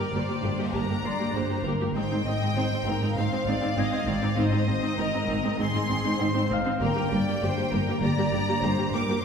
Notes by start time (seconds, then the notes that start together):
Already playing: A#4 D5 A#5 D6 F6
0.14 G1 G2 A#3 G4 C5
0.29 G2 A#3 G4
0.43 G1 G2 A#3 G4
0.58 G2 A#3 G4
0.73 G1 G2 A#3 G4 A#4 A#5
0.80 F#6
0.90 G2 A#3 G4
1.03 G1 G2 A#3 G4 D5 C6 C7
1.19 G2 A#3 G4
1.34 G1 G2 A#3 G4 C5
1.49 G2 A#3 G4
1.63 G1 G2 A#3 G4 A#4
1.81 G2 A#3 G4
1.93 G#1 G#2 C4 D#4 C5 G5
1.97 G#2
2.11 G#2 C4 D#4
2.24 G#1 G#2 C4 D#4 D#5
2.42 G#2 C4 D#4
2.54 G#1 G#2 C4 D#4 C5
2.71 G#2 C4 D#4
2.84 G#1 G#2 C4 D#4 A#4
3.01 G#2 C4 D#4
3.16 G#1 G#2 C4 D#4 C5 F5
3.32 G#2 C4 D#4
3.46 G#1 G#2 C4 D#4 D5
3.61 G#2 C4 D#4
3.77 G#1 G#2 C4 D#4 D#5 G#6
3.92 G#2 C4 D#4
4.07 G#1 G#2 C4 D#4 D5
4.21 G#2 C4 D#4
4.35 G#1 G#2 C4 D#4 C5
4.40 D#5
4.51 G#2 C4 D#4
4.68 G#1 G#2 C4 D#4
4.82 G#2 C4 D#4
4.98 G#1 G#2 C4 D#4 A#4
5.13 G#2 C4 D#4
5.28 G#1 G#2 C4 D#4
5.43 G#2 C4 D#4
5.59 G#1 G#2 C4 D#4 G#4 C6
5.74 G#2 C4 D#4
5.89 G#1 G#2 C4 D#4
6.04 G#2 C4 D#4
6.20 G#1 G#2 C4 D#4 C5
6.34 G#2 C4 D#4
6.50 G#1 G#2 C4 D#4 F5 F6
6.64 G#2 C4 D#4
6.80 G1 G2 A#3 G4 A#4 G5
6.95 G2 A#3 G4
7.11 G1 G2 A#3 G4 D5
7.25 G2 A#3 G4
7.41 G1 G2 A#3 G4 C5
7.57 G2 A#3 G4
7.72 G1 G2 A#3 G4 A#4
7.86 G2 A#3 G4
8.01 G1 G2 A#3 G4 D5 A#5
8.17 G2 A#3 G4
8.31 G1 G2 A#3 G4
8.46 G2 A#3 G4
8.61 G1 G2 A#3 G4 C5
8.76 G2 A#3 G4
8.92 G1 G2 A#3 G4 A#4 D6
9.07 G2 A#3 G4